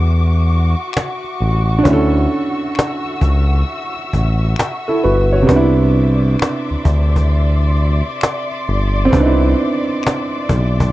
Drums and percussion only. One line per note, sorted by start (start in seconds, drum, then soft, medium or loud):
0.05 cajon slap soft
0.34 cajon slap soft
0.49 cajon slap soft
0.93 finger snap medium
0.93 cajon slap loud
0.97 cajon slap medium
1.24 cajon slap soft
1.41 cajon slap soft
1.85 cajon bass loud
2.17 cajon slap soft
2.30 cajon slap soft
2.75 finger snap medium
2.75 cajon slap loud
2.80 cajon slap medium
3.05 cajon slap soft
3.21 cajon bass medium
3.52 cajon slap soft
3.68 cajon slap soft
3.96 cajon slap soft
4.13 cajon bass medium
4.56 finger snap medium
4.56 cajon slap loud
4.88 cajon slap soft
5.04 cajon slap soft
5.49 cajon bass loud
5.80 cajon slap soft
5.94 cajon slap soft
6.39 finger snap medium
6.39 cajon slap loud
6.39 cajon slap medium
6.69 cajon slap soft
6.85 cajon bass loud
7.16 cajon bass medium
7.32 cajon slap soft
7.61 cajon slap soft
7.76 cajon slap soft
8.21 finger snap medium
8.21 cajon slap loud
8.51 cajon slap soft
8.68 cajon slap soft
9.13 cajon bass loud
9.44 cajon slap soft
9.58 cajon slap soft
9.89 cajon slap soft
10.03 finger snap medium
10.03 cajon slap loud
10.07 cajon slap medium
10.33 cajon slap soft
10.49 cajon bass loud
10.80 cajon bass loud